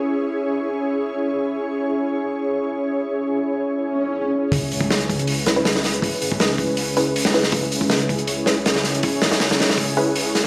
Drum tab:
HH |----------------|----------------|----------------|o-o-oxoxo-o-o-ox|
SD |----------------|----------------|----------------|----o-----o-ooo-|
BD |----------------|----------------|----------------|o--o--o---------|

HH |o-o-o-o-o-o-o-o-|o-o-oxoxo-o-o-ox|o-ooooooo-o-o-o-|
SD |----o--------ooo|----o-----o-ooo-|--oooooo------o-|
BD |o--o--o---------|o--o--o---------|o-------o-------|